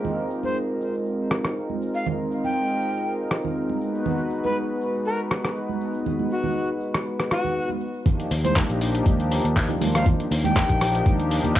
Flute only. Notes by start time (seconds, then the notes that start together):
0.44 C5
1.95 F5
2.45 G5
4.44 B4
5.06 A#4
6.31 F#4
7.31 F#4
8.44 C5
9.94 F5
10.44 G5